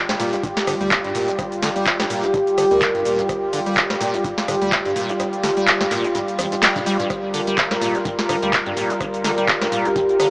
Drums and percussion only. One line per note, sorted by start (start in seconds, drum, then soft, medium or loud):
0.09 cross-stick soft
0.09 snare medium
0.09 closed hi-hat soft
0.20 snare soft
0.20 mid tom medium
0.20 open hi-hat medium
0.20 shaker medium
0.33 closed hi-hat medium
0.33 shaker soft
0.43 kick loud
0.43 closed hi-hat medium
0.43 mid tom medium
0.43 shaker soft
0.57 snare medium
0.57 closed hi-hat soft
0.57 shaker soft
0.67 cross-stick medium
0.67 mid tom medium
0.67 open hi-hat loud
0.67 shaker medium
0.81 closed hi-hat soft
0.81 shaker soft
0.91 kick loud
0.91 clap loud
0.91 closed hi-hat medium
0.91 shaker soft
1.04 closed hi-hat soft
1.15 mid tom medium
1.15 open hi-hat medium
1.15 shaker medium
1.28 closed hi-hat medium
1.28 shaker soft
1.39 kick loud
1.39 cross-stick medium
1.39 closed hi-hat medium
1.39 shaker soft
1.52 closed hi-hat soft
1.52 shaker soft
1.62 snare medium
1.62 open hi-hat loud
1.62 shaker medium
1.76 closed hi-hat medium
1.76 shaker soft
1.86 kick loud
1.86 clap loud
1.86 closed hi-hat medium
1.86 shaker soft
2.00 cross-stick soft
2.00 snare medium
2.00 closed hi-hat soft
2.00 shaker soft
2.10 mid tom medium
2.10 open hi-hat medium
2.10 shaker medium
2.23 closed hi-hat medium
2.23 shaker soft
2.34 kick loud
2.34 closed hi-hat medium
2.34 mid tom medium
2.34 shaker soft
2.47 closed hi-hat soft
2.47 shaker soft
2.58 cross-stick medium
2.58 open hi-hat loud
2.58 shaker medium
2.71 closed hi-hat medium
2.71 shaker soft
2.82 kick loud
2.82 clap loud
2.82 closed hi-hat medium
2.82 shaker soft
2.95 closed hi-hat soft
2.95 mid tom medium
3.05 open hi-hat medium
3.05 shaker medium
3.19 closed hi-hat medium
3.19 mid tom medium
3.19 shaker soft
3.29 kick loud
3.29 cross-stick medium
3.29 closed hi-hat medium
3.29 shaker soft
3.53 open hi-hat loud
3.53 shaker medium
3.66 closed hi-hat medium
3.66 shaker soft
3.77 kick loud
3.77 clap loud
3.77 closed hi-hat medium
3.77 shaker soft
3.90 cross-stick soft
3.90 snare medium
3.90 closed hi-hat soft
4.01 snare soft
4.01 mid tom medium
4.01 open hi-hat medium
4.01 shaker medium
4.14 closed hi-hat medium
4.14 shaker soft
4.24 kick loud
4.24 closed hi-hat medium
4.24 mid tom medium
4.24 shaker soft
4.38 snare medium
4.38 closed hi-hat soft
4.38 shaker soft
4.48 cross-stick medium
4.48 mid tom medium
4.48 open hi-hat loud
4.48 shaker medium
4.62 closed hi-hat medium
4.62 shaker soft
4.72 kick loud
4.72 clap loud
4.72 closed hi-hat medium
4.72 shaker soft
4.85 closed hi-hat soft
4.96 mid tom medium
4.96 open hi-hat medium
4.96 shaker medium
5.09 closed hi-hat medium
5.09 shaker soft
5.20 cross-stick medium
5.20 closed hi-hat medium
5.20 shaker soft
5.33 closed hi-hat soft
5.33 shaker soft
5.43 snare medium
5.43 open hi-hat loud
5.43 shaker medium
5.57 closed hi-hat medium
5.57 shaker soft
5.67 clap loud
5.67 closed hi-hat medium
5.67 shaker soft
5.81 cross-stick soft
5.81 snare medium
5.81 closed hi-hat soft
5.81 shaker soft
5.91 snare soft
5.91 clap soft
5.91 mid tom medium
5.91 open hi-hat medium
5.91 shaker medium
6.04 closed hi-hat medium
6.04 shaker soft
6.15 closed hi-hat medium
6.15 mid tom medium
6.15 shaker soft
6.28 closed hi-hat soft
6.28 shaker soft
6.39 cross-stick medium
6.39 open hi-hat loud
6.39 high tom medium
6.39 shaker medium
6.52 closed hi-hat medium
6.52 shaker soft
6.62 snare medium
6.62 clap loud
6.62 closed hi-hat medium
6.62 shaker soft
6.76 closed hi-hat soft
6.76 mid tom medium
6.76 shaker soft
6.86 open hi-hat medium
6.86 shaker medium
7.00 closed hi-hat medium
7.00 mid tom medium
7.00 shaker soft
7.10 kick loud
7.10 cross-stick medium
7.10 closed hi-hat medium
7.10 shaker soft
7.34 open hi-hat loud
7.34 shaker medium
7.47 closed hi-hat medium
7.47 shaker soft
7.58 kick loud
7.58 clap loud
7.58 closed hi-hat medium
7.58 shaker soft
7.71 cross-stick soft
7.71 snare medium
7.71 closed hi-hat soft
7.81 snare soft
7.81 mid tom medium
7.81 open hi-hat medium
7.81 shaker medium
7.95 closed hi-hat medium
7.95 shaker soft
8.05 kick loud
8.05 closed hi-hat medium
8.05 mid tom medium
8.05 shaker soft
8.19 snare medium
8.19 closed hi-hat soft
8.19 shaker soft
8.29 cross-stick medium
8.29 mid tom medium
8.29 open hi-hat loud
8.29 shaker medium
8.42 closed hi-hat medium
8.42 shaker soft
8.53 kick loud
8.53 clap loud
8.53 closed hi-hat medium
8.53 shaker soft
8.66 closed hi-hat soft
8.77 mid tom medium
8.77 open hi-hat medium
8.77 shaker medium
8.90 closed hi-hat medium
8.90 shaker soft
9.01 kick loud
9.01 cross-stick medium
9.01 closed hi-hat medium
9.01 shaker soft
9.14 closed hi-hat soft
9.14 shaker soft
9.24 snare medium
9.24 open hi-hat loud
9.24 shaker medium
9.38 closed hi-hat medium
9.38 shaker soft
9.48 kick loud
9.48 clap loud
9.48 closed hi-hat medium
9.48 shaker soft
9.62 cross-stick soft
9.62 snare medium
9.62 closed hi-hat soft
9.62 shaker soft
9.72 mid tom medium
9.72 open hi-hat medium
9.72 shaker medium
9.85 closed hi-hat medium
9.85 shaker soft
9.96 kick loud
9.96 closed hi-hat medium
9.96 mid tom loud
9.96 shaker soft
10.09 closed hi-hat soft
10.09 shaker soft
10.20 cross-stick medium
10.20 open hi-hat loud
10.20 shaker medium